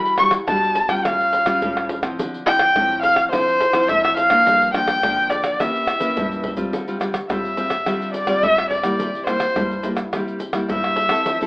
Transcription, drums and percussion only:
0.06 pandeiro soft
0.06 shaker soft
0.18 pandeiro medium
0.18 tamborim medium
0.18 shaker medium
0.31 pandeiro medium
0.31 tamborim medium
0.31 shaker medium
0.48 pandeiro medium
0.48 tamborim medium
0.48 shaker medium
0.48 surdo loud
0.63 pandeiro soft
0.63 shaker soft
0.75 pandeiro medium
0.75 shaker medium
0.75 surdo soft
0.89 pandeiro medium
0.89 tamborim medium
0.89 shaker medium
0.89 surdo soft
1.05 pandeiro medium
1.05 tamborim medium
1.05 shaker medium
1.05 surdo medium
1.21 pandeiro soft
1.21 shaker soft
1.33 pandeiro medium
1.33 shaker medium
1.46 pandeiro medium
1.46 tamborim medium
1.46 shaker medium
1.46 surdo soft
1.62 pandeiro medium
1.62 shaker medium
1.62 surdo loud
1.77 pandeiro soft
1.77 tamborim medium
1.77 shaker soft
1.89 pandeiro medium
2.03 pandeiro medium
2.03 tamborim medium
2.03 shaker medium
2.03 surdo soft
2.19 pandeiro medium
2.19 shaker medium
2.19 surdo medium
2.34 pandeiro soft
2.34 shaker soft
2.47 pandeiro medium
2.47 tamborim medium
2.47 shaker medium
2.59 pandeiro medium
2.59 tamborim medium
2.59 shaker medium
2.76 pandeiro medium
2.76 tamborim medium
2.76 shaker medium
2.76 surdo loud
2.91 pandeiro soft
2.91 shaker soft
3.03 pandeiro medium
3.03 shaker medium
3.03 surdo soft
3.16 pandeiro medium
3.16 tamborim medium
3.16 shaker medium
3.16 surdo soft
3.33 pandeiro medium
3.33 tamborim medium
3.33 shaker medium
3.33 surdo medium
3.48 pandeiro soft
3.48 shaker soft
3.60 pandeiro medium
3.73 pandeiro medium
3.73 tamborim medium
3.73 shaker medium
3.73 surdo soft
3.89 pandeiro medium
3.89 shaker medium
3.89 surdo loud
4.05 pandeiro soft
4.05 tamborim medium
4.05 shaker soft
4.17 pandeiro medium
4.17 shaker medium
4.30 pandeiro medium
4.30 tamborim medium
4.30 shaker medium
4.30 surdo soft
4.47 pandeiro medium
4.47 shaker medium
4.47 surdo medium
4.62 pandeiro soft
4.62 shaker soft
4.74 pandeiro medium
4.74 tamborim medium
4.74 shaker medium
4.88 pandeiro medium
4.88 tamborim medium
4.88 shaker medium
5.03 pandeiro medium
5.03 tamborim medium
5.03 shaker medium
5.03 surdo loud
5.18 pandeiro soft
5.18 shaker soft
5.31 pandeiro medium
5.31 shaker medium
5.31 surdo soft
5.44 pandeiro medium
5.44 tamborim medium
5.44 shaker medium
5.44 surdo soft
5.60 pandeiro medium
5.60 tamborim medium
5.60 shaker medium
5.60 surdo medium
5.75 pandeiro soft
5.75 shaker soft
5.87 pandeiro medium
5.87 tamborim medium
5.87 shaker medium
6.01 pandeiro medium
6.01 shaker medium
6.01 surdo soft
6.17 pandeiro medium
6.17 shaker medium
6.17 surdo loud
6.32 pandeiro soft
6.32 shaker soft
6.44 pandeiro medium
6.44 surdo loud
6.57 pandeiro medium
6.57 shaker medium
6.57 surdo loud
6.73 pandeiro medium
6.73 shaker medium
6.73 surdo medium
6.88 pandeiro soft
6.88 shaker soft
7.01 pandeiro medium
7.01 tamborim medium
7.01 shaker medium
7.14 pandeiro medium
7.14 tamborim medium
7.14 shaker medium
7.30 pandeiro medium
7.30 tamborim medium
7.30 shaker medium
7.30 surdo loud
7.45 pandeiro soft
7.45 shaker soft
7.57 pandeiro medium
7.57 shaker medium
7.57 surdo soft
7.70 pandeiro medium
7.70 tamborim medium
7.70 shaker medium
7.70 surdo soft
7.86 pandeiro medium
7.86 tamborim medium
7.86 shaker medium
7.86 surdo soft
8.02 pandeiro soft
8.02 shaker soft
8.14 pandeiro medium
8.14 shaker medium
8.27 pandeiro medium
8.27 tamborim medium
8.27 shaker medium
8.27 surdo soft
8.43 pandeiro medium
8.43 shaker medium
8.43 surdo loud
8.58 pandeiro soft
8.58 tamborim medium
8.58 shaker soft
8.71 pandeiro medium
8.71 surdo soft
8.84 pandeiro medium
8.84 tamborim medium
8.84 shaker medium
8.84 surdo soft
9.00 pandeiro medium
9.00 shaker medium
9.00 surdo medium
9.15 pandeiro soft
9.15 shaker soft
9.27 pandeiro medium
9.27 tamborim medium
9.27 shaker medium
9.40 pandeiro medium
9.40 tamborim medium
9.40 shaker medium
9.56 pandeiro medium
9.56 tamborim medium
9.56 shaker medium
9.56 surdo loud
9.71 pandeiro soft
9.71 shaker soft
9.83 pandeiro medium
9.83 shaker medium
9.83 surdo soft
9.97 pandeiro medium
9.97 tamborim medium
9.97 shaker medium
9.97 surdo soft
10.13 pandeiro medium
10.13 tamborim medium
10.13 shaker medium
10.13 surdo medium
10.28 pandeiro soft
10.28 shaker soft
10.40 pandeiro medium
10.40 shaker medium
10.53 pandeiro medium
10.53 tamborim medium
10.53 shaker medium
10.53 surdo soft
10.69 pandeiro medium
10.69 shaker medium
10.69 surdo loud
10.84 pandeiro soft
10.84 tamborim medium
10.84 shaker soft
10.96 pandeiro medium
11.09 pandeiro medium
11.09 tamborim medium
11.09 shaker medium
11.09 surdo soft
11.26 pandeiro medium
11.26 shaker medium
11.26 surdo medium
11.41 pandeiro soft
11.41 shaker soft

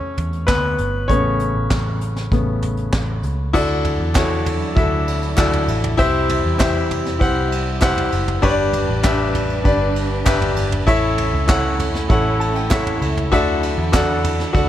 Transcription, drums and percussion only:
0.17 closed hi-hat medium
0.17 floor tom soft
0.33 closed hi-hat soft
0.48 kick loud
0.48 snare loud
0.48 clap loud
0.48 closed hi-hat medium
0.78 closed hi-hat medium
1.09 kick medium
1.09 closed hi-hat medium
1.40 closed hi-hat medium
1.70 kick loud
1.70 snare loud
1.70 clap medium
1.70 closed hi-hat medium
2.01 closed hi-hat medium
2.16 snare soft
2.32 kick medium
2.32 closed hi-hat medium
2.62 closed hi-hat medium
2.62 floor tom soft
2.77 closed hi-hat soft
2.92 kick loud
2.92 snare loud
2.92 clap medium
2.92 closed hi-hat medium
3.23 closed hi-hat medium
3.54 kick loud
3.54 crash medium
3.85 floor tom medium
3.85 ride medium
4.15 kick loud
4.15 snare loud
4.15 clap medium
4.15 clap loud
4.15 ride medium
4.46 floor tom medium
4.46 ride medium
4.62 ride soft
4.77 kick loud
4.77 ride medium
5.08 ride medium
5.22 ride soft
5.38 kick loud
5.38 snare loud
5.38 clap loud
5.38 ride medium
5.53 floor tom medium
5.68 ride medium
5.84 floor tom medium
5.99 kick loud
5.99 ride medium
6.29 floor tom medium
6.29 ride medium
6.60 kick loud
6.60 snare loud
6.60 clap medium
6.60 clap loud
6.60 ride medium
6.91 floor tom medium
6.91 ride medium
7.06 snare soft
7.06 ride soft
7.21 kick loud
7.21 ride medium
7.52 ride medium
7.82 kick loud
7.82 snare loud
7.82 clap medium
7.82 clap loud
7.82 ride medium
7.98 floor tom medium
8.12 ride medium
8.28 floor tom medium
8.43 kick loud
8.43 ride medium
8.73 floor tom medium
8.73 ride medium
9.04 kick loud
9.04 snare loud
9.04 clap loud
9.04 ride medium
9.35 floor tom medium
9.35 ride medium
9.50 ride soft
9.65 kick loud
9.65 ride medium
9.96 ride medium
10.26 kick loud
10.26 snare loud
10.26 clap loud
10.26 ride medium
10.42 floor tom medium
10.56 ride medium
10.72 floor tom medium
10.87 kick loud
10.87 ride medium
11.18 floor tom medium
11.18 ride medium
11.49 kick loud
11.49 snare loud
11.49 clap medium
11.49 clap loud
11.49 ride medium
11.79 floor tom medium
11.79 ride medium
11.95 snare soft
12.10 kick loud
12.10 ride medium
12.41 ride medium
12.56 ride soft
12.71 kick loud
12.71 snare loud
12.71 clap loud
12.71 ride medium
12.87 floor tom medium
13.02 ride medium
13.17 floor tom medium
13.32 kick loud
13.32 ride medium
13.63 ride medium
13.93 kick loud
13.93 snare loud
13.93 clap medium
13.93 clap loud
13.93 ride medium
14.24 floor tom medium
14.24 ride medium
14.40 snare soft
14.55 kick loud
14.55 ride medium

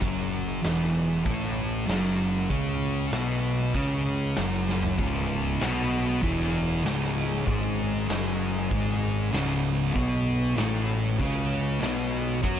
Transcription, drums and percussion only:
0.01 kick loud
0.01 open hi-hat medium
0.33 open hi-hat medium
0.64 snare loud
0.64 open hi-hat medium
0.95 open hi-hat medium
1.26 kick loud
1.26 open hi-hat medium
1.43 snare soft
1.57 open hi-hat medium
1.88 snare loud
1.88 open hi-hat medium
2.04 snare soft
2.20 open hi-hat medium
2.50 kick loud
2.50 open hi-hat medium
2.81 open hi-hat medium
3.12 snare loud
3.12 open hi-hat medium
3.43 open hi-hat medium
3.74 kick loud
3.74 open hi-hat medium
4.05 open hi-hat medium
4.36 snare loud
4.36 open hi-hat medium
4.69 snare medium
4.83 floor tom medium
4.99 kick loud
4.99 open hi-hat medium
5.30 open hi-hat soft
5.60 snare loud
5.60 open hi-hat medium
5.92 open hi-hat medium
6.22 kick loud
6.22 open hi-hat medium
6.40 snare soft
6.54 open hi-hat medium
6.85 snare loud
6.85 open hi-hat medium
7.03 snare soft
7.17 open hi-hat medium
7.47 kick loud
7.47 open hi-hat medium
7.79 open hi-hat medium
8.09 snare loud
8.09 open hi-hat medium
8.40 open hi-hat medium
8.71 kick loud
8.71 open hi-hat medium
8.88 snare soft
9.02 open hi-hat medium
9.33 snare loud
9.33 open hi-hat medium
9.65 open hi-hat medium
9.96 kick loud
9.96 open hi-hat medium
10.26 open hi-hat medium
10.57 snare loud
10.57 open hi-hat medium
10.89 open hi-hat medium
11.20 kick loud
11.20 open hi-hat medium
11.52 open hi-hat medium
11.82 snare loud
11.82 open hi-hat medium
12.13 open hi-hat medium
12.44 kick loud
12.44 open hi-hat medium

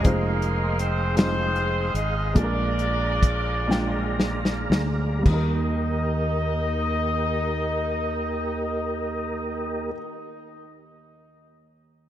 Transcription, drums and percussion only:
0.04 kick loud
0.04 closed hi-hat medium
0.42 closed hi-hat soft
0.79 closed hi-hat medium
1.17 snare medium
1.17 closed hi-hat medium
1.56 closed hi-hat soft
1.95 closed hi-hat medium
2.36 kick medium
2.36 closed hi-hat medium
2.79 closed hi-hat soft
3.23 kick medium
3.23 closed hi-hat medium
3.71 snare soft
4.20 snare medium
4.45 snare medium
4.72 snare medium
5.26 kick medium
5.26 crash medium

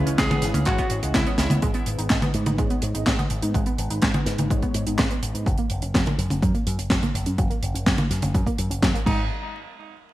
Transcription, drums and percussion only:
0.07 closed hi-hat medium
0.18 kick loud
0.18 snare loud
0.18 clap medium
0.18 closed hi-hat medium
0.31 closed hi-hat soft
0.31 high tom medium
0.42 snare soft
0.42 closed hi-hat loud
0.54 closed hi-hat medium
0.54 high tom medium
0.65 kick loud
0.65 clap medium
0.65 closed hi-hat medium
0.78 kick medium
0.78 closed hi-hat soft
0.90 closed hi-hat medium
1.03 closed hi-hat medium
1.14 kick loud
1.14 snare loud
1.14 clap medium
1.14 closed hi-hat medium
1.26 closed hi-hat soft
1.38 snare medium
1.38 closed hi-hat loud
1.50 closed hi-hat medium
1.50 high tom medium
1.62 kick loud
1.62 closed hi-hat medium
1.74 closed hi-hat soft
1.86 closed hi-hat loud
1.99 closed hi-hat medium
2.10 kick loud
2.10 snare loud
2.10 clap medium
2.10 closed hi-hat medium
2.22 closed hi-hat soft
2.22 high tom medium
2.34 closed hi-hat medium
2.46 closed hi-hat medium
2.46 high tom medium
2.58 kick loud
2.58 closed hi-hat medium
2.70 closed hi-hat soft
2.82 closed hi-hat loud
2.95 closed hi-hat medium
3.06 kick loud
3.06 snare loud
3.06 clap medium
3.06 closed hi-hat medium
3.19 closed hi-hat soft
3.19 high tom medium
3.30 closed hi-hat medium
3.42 closed hi-hat medium
3.54 kick loud
3.54 closed hi-hat medium
3.66 closed hi-hat soft
3.79 closed hi-hat medium
3.91 closed hi-hat medium
4.02 kick loud
4.02 snare loud
4.02 clap loud
4.02 closed hi-hat medium
4.14 closed hi-hat soft
4.14 high tom medium
4.26 snare soft
4.26 closed hi-hat loud
4.38 closed hi-hat medium
4.38 high tom medium
4.50 kick loud
4.50 closed hi-hat medium
4.62 kick medium
4.62 closed hi-hat soft
4.74 closed hi-hat loud
4.87 closed hi-hat medium
4.98 kick loud
4.98 snare loud
4.98 clap medium
4.98 closed hi-hat medium
5.11 closed hi-hat soft
5.23 closed hi-hat medium
5.35 closed hi-hat medium
5.46 kick loud
5.46 closed hi-hat medium
5.58 closed hi-hat soft
5.70 closed hi-hat medium
5.82 closed hi-hat medium
5.94 kick loud
5.94 snare loud
5.94 clap medium
5.94 closed hi-hat medium
6.06 closed hi-hat soft
6.06 high tom medium
6.19 closed hi-hat medium
6.30 closed hi-hat medium
6.30 high tom soft
6.42 kick loud
6.42 closed hi-hat medium
6.55 closed hi-hat soft
6.67 closed hi-hat loud
6.79 closed hi-hat medium
6.90 kick loud
6.90 snare loud
6.90 clap medium
6.90 closed hi-hat medium
7.03 closed hi-hat soft
7.03 high tom soft
7.15 closed hi-hat medium
7.26 closed hi-hat medium
7.38 kick loud
7.38 closed hi-hat medium
7.51 closed hi-hat soft
7.63 closed hi-hat loud
7.76 closed hi-hat medium
7.86 kick loud
7.86 snare loud
7.86 clap medium
7.86 closed hi-hat medium
7.98 closed hi-hat soft
7.98 high tom medium
8.10 snare soft
8.10 closed hi-hat loud
8.22 closed hi-hat medium
8.22 high tom medium
8.34 kick loud
8.34 closed hi-hat medium
8.46 kick medium
8.46 closed hi-hat soft
8.58 closed hi-hat loud
8.71 closed hi-hat medium
8.82 kick loud
8.82 snare loud
8.82 clap medium
8.82 closed hi-hat medium
8.95 closed hi-hat soft
9.06 kick loud
9.06 crash medium

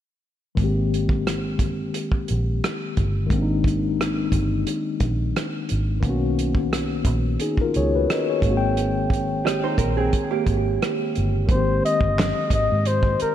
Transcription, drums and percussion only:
0.57 kick medium
0.57 closed hi-hat medium
0.94 closed hi-hat medium
1.09 kick medium
1.27 cross-stick medium
1.27 closed hi-hat medium
1.59 kick medium
1.59 closed hi-hat medium
1.94 closed hi-hat medium
2.12 kick medium
2.28 closed hi-hat medium
2.64 cross-stick medium
2.64 closed hi-hat medium
2.97 kick medium
2.97 closed hi-hat soft
3.30 kick medium
3.30 closed hi-hat medium
3.64 kick medium
3.64 closed hi-hat medium
4.01 cross-stick medium
4.01 closed hi-hat medium
4.32 kick medium
4.32 closed hi-hat medium
4.67 closed hi-hat medium
5.00 kick medium
5.00 closed hi-hat medium
5.36 cross-stick medium
5.36 closed hi-hat medium
5.69 closed hi-hat medium
6.03 kick medium
6.03 closed hi-hat medium
6.39 closed hi-hat medium
6.55 kick medium
6.73 cross-stick medium
6.73 closed hi-hat medium
7.05 kick medium
7.05 closed hi-hat medium
7.40 closed hi-hat medium
7.57 kick medium
7.74 closed hi-hat medium
8.10 cross-stick medium
8.10 closed hi-hat medium
8.42 kick medium
8.42 closed hi-hat soft
8.77 closed hi-hat medium
9.10 kick medium
9.10 closed hi-hat medium
9.47 cross-stick medium
9.47 closed hi-hat medium
9.78 kick medium
9.78 closed hi-hat medium
10.13 kick medium
10.13 closed hi-hat medium
10.47 kick medium
10.47 closed hi-hat medium
10.82 cross-stick medium
10.82 closed hi-hat medium
11.15 closed hi-hat soft
11.49 kick medium
11.49 closed hi-hat medium
11.86 closed hi-hat medium
12.01 kick medium
12.19 snare medium
12.19 clap medium
12.19 closed hi-hat medium
12.50 kick medium
12.50 closed hi-hat medium
12.85 closed hi-hat medium
13.03 kick medium
13.20 closed hi-hat medium

